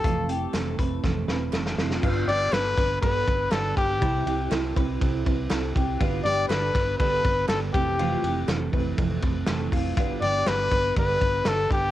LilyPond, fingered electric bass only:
\new Staff \with { instrumentName = "Fingered electric bass" } { \clef bass \time 4/4 \key g \mixolydian \tempo 4 = 121 f,,4 f,,8 f,,8 f,,8 e,,8 f,,8 f,,8 | g,,8 g,,8 g,,8 g,,8 g,,8 g,,8 g,,8 g,,8 | c,8 c,8 c,8 c,8 c,8 c,8 c,8 c,8 | g,,8 g,,8 g,,8 g,,8 g,,8 g,,8 g,,8 f,,8~ |
f,,8 f,,8 f,,8 f,,8 f,,8 f,,8 f,,8 f,,8 | g,,8 g,,8 g,,8 g,,8 g,,8 g,,8 g,,8 g,,8 | }